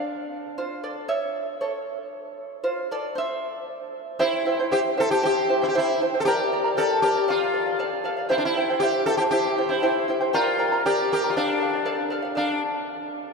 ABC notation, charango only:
X:1
M:2/4
L:1/16
Q:1/4=117
K:Cmix
V:1 name="Charango"
z4 [Fc]2 [Ad]2 | [^ce]4 [Ac]3 z | z4 [Fc]2 [Ad]2 | [ce]6 z2 |
[EGceg]2 [Eceg] [Ecg] [EGceg]2 [Eceg] [Ecg] | [EGceg]2 [Eceg] [Ecg] [EGceg]2 [Eceg] [Ecg] | [GBdgb]2 [Bdgb] [Bdb] [GBdgb]2 [Bdgb] [Bdb] | [Adf]2 [Adf] [df] [Adf]2 [Adf] [df] |
[EGceg]2 [Eceg] [Ecg] [EGceg]2 [Eceg] [Ecg] | [EGceg]2 [Eceg] [Ecg] [EGceg]2 [Eceg] [Ecg] | [GBdgb]2 [Bdgb] [Bdb] [GBdgb]2 [Bdgb] [Bdb] | [Adf]2 [Adf] [df] [Adf]2 [Adf] [df] |
[Adf]2 z6 |]